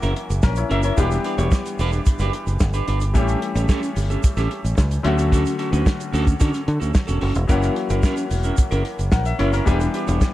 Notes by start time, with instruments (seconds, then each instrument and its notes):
Already playing: grand piano E3 F#3 A#3 C#4 F#4
0.02 fingered electric bass F#1, clean electric guitar C#4 E4 A#4, snare, closed hi-hat, shaker
0.16 muted clean electric guitar stroke, closed hi-hat
0.30 fingered electric bass F#1, muted clean electric guitar stroke, closed hi-hat, shaker
0.42 fingered electric bass A#1, grand piano C#4 A#4, muted clean electric guitar stroke, kick, snare, shaker
0.56 grand piano E4 C#5, muted clean electric guitar stroke, closed hi-hat, shaker
0.69 fingered electric bass F#1, clean electric guitar C#4 E4 A#4, grand piano E5, closed hi-hat
0.83 clean electric guitar C#4 E4 A#4, grand piano E4 C#5, closed hi-hat, shaker
0.97 fingered electric bass E1, grand piano E3 G3 B3 D4 G4, clean electric guitar D4 G4 B4, kick, closed hi-hat, shaker
1.11 muted clean electric guitar stroke, closed hi-hat, shaker
1.24 clean electric guitar D4 G4 B4, closed hi-hat
1.38 fingered electric bass E1, clean electric guitar D4 G4 C#5, closed hi-hat, shaker
1.52 kick, snare, shaker
1.66 muted clean electric guitar stroke, closed hi-hat, shaker
1.79 fingered electric bass E1, clean electric guitar D4 G4 B4, open hi-hat, shaker
1.92 muted clean electric guitar stroke, closed hi-hat, shaker
2.06 muted clean electric guitar stroke, kick, closed hi-hat, shaker
2.19 fingered electric bass F#1, clean electric guitar D4 G4 B4, snare, closed hi-hat, shaker
2.33 muted clean electric guitar stroke, closed hi-hat
2.47 fingered electric bass F#1, muted clean electric guitar stroke, closed hi-hat, shaker
2.60 fingered electric bass G1, muted clean electric guitar stroke, kick, snare, shaker
2.74 clean electric guitar D4 G4 B4, closed hi-hat, shaker
2.88 fingered electric bass G1, clean electric guitar D4 G4 B4, closed hi-hat
3.00 muted clean electric guitar stroke, closed hi-hat, shaker
3.14 fingered electric bass A1, grand piano E3 G3 A3 C#4 G4, clean electric guitar C#4 G4 A4, kick, closed hi-hat, shaker
3.28 closed hi-hat, shaker
3.42 muted clean electric guitar stroke, closed hi-hat
3.55 fingered electric bass A1, clean electric guitar C#4 G4 A4, closed hi-hat, shaker
3.69 clean electric guitar C#4 G4 A4, kick, snare, shaker
3.83 muted clean electric guitar stroke, closed hi-hat, shaker
3.96 fingered electric bass G1, muted clean electric guitar stroke, open hi-hat, shaker
4.10 clean electric guitar C#4 G4 A4, closed hi-hat, shaker
4.23 muted clean electric guitar stroke, kick, closed hi-hat, shaker
4.37 fingered electric bass A1, clean electric guitar C#4 G4 A4, snare, closed hi-hat, shaker
4.51 muted clean electric guitar stroke, closed hi-hat
4.64 fingered electric bass A1, muted clean electric guitar stroke, closed hi-hat, shaker
4.77 fingered electric bass C#2, muted clean electric guitar stroke, kick, snare, shaker
4.91 muted clean electric guitar stroke, closed hi-hat, shaker
5.03 fingered electric bass D2, grand piano D3 F#3 A3 C#4 F#4, clean electric guitar C#4 F#4 A4, closed hi-hat
5.18 clean electric guitar C#4 F#4 A4, closed hi-hat, shaker
5.32 clean electric guitar C#4 F#4 A4, kick, closed hi-hat, shaker
5.45 muted clean electric guitar stroke, closed hi-hat, shaker
5.58 clean electric guitar C#4 F#4 A4, closed hi-hat
5.72 fingered electric bass D2, clean electric guitar C#4 F#4 B4, closed hi-hat, shaker
5.86 kick, snare, shaker
6.00 muted clean electric guitar stroke, closed hi-hat, shaker
6.12 fingered electric bass D2, clean electric guitar C#4 F#4 A4, open hi-hat, shaker
6.27 muted clean electric guitar stroke, kick, closed hi-hat, shaker
6.40 fingered electric bass D3, clean electric guitar C#4 F#4 A4, kick, closed hi-hat, shaker
6.53 muted clean electric guitar stroke, snare, closed hi-hat, shaker
6.67 fingered electric bass D3, muted clean electric guitar stroke, closed hi-hat
6.80 fingered electric bass D2, clean electric guitar C#4 F#4 A4, closed hi-hat, shaker
6.93 muted clean electric guitar stroke, kick, snare, shaker
7.07 fingered electric bass E1, clean electric guitar C#4 F#4 A4, closed hi-hat, shaker
7.21 fingered electric bass F#1, clean electric guitar C#4 F#4 A4, open hi-hat
7.35 fingered electric bass E1, muted clean electric guitar stroke, closed hi-hat, shaker
7.47 fingered electric bass F#1, grand piano E3 F#3 A#3 C#4 F#4, clean electric guitar C#4 E4 A#4, kick, closed hi-hat, shaker
7.63 closed hi-hat, shaker
7.76 muted clean electric guitar stroke, closed hi-hat
7.90 fingered electric bass F#1, clean electric guitar C#4 E4 A#4, closed hi-hat, shaker
8.03 clean electric guitar C#4 E4 A#4, kick, snare, shaker
8.17 muted clean electric guitar stroke, closed hi-hat, shaker
8.30 fingered electric bass E1, muted clean electric guitar stroke, open hi-hat, shaker
8.44 clean electric guitar C#4 E4 A#4, closed hi-hat, shaker
8.57 muted clean electric guitar stroke, kick, closed hi-hat, shaker
8.71 fingered electric bass F#1, clean electric guitar C#4 E4 A#4, closed hi-hat, shaker
8.85 muted clean electric guitar stroke, closed hi-hat
8.99 fingered electric bass F#1, muted clean electric guitar stroke, closed hi-hat, shaker
9.12 fingered electric bass A#1, grand piano A#4 F#5, muted clean electric guitar stroke, kick, snare, shaker
9.25 grand piano E5, muted clean electric guitar stroke, closed hi-hat, shaker
9.39 fingered electric bass F#1, clean electric guitar C#4 E4 A#4, grand piano E4 C#5, closed hi-hat
9.53 grand piano C#4 A#4, clean electric guitar C#4 E4 A#4, closed hi-hat, shaker
9.65 fingered electric bass E1, grand piano E3 G3 B3 D4 G4, clean electric guitar D4 G4 B4, kick, closed hi-hat, shaker
9.80 muted clean electric guitar stroke, closed hi-hat, shaker
9.94 clean electric guitar D4 G4 B4, closed hi-hat
10.07 fingered electric bass E1, clean electric guitar D4 G4 C#5, closed hi-hat, shaker
10.21 kick, snare, shaker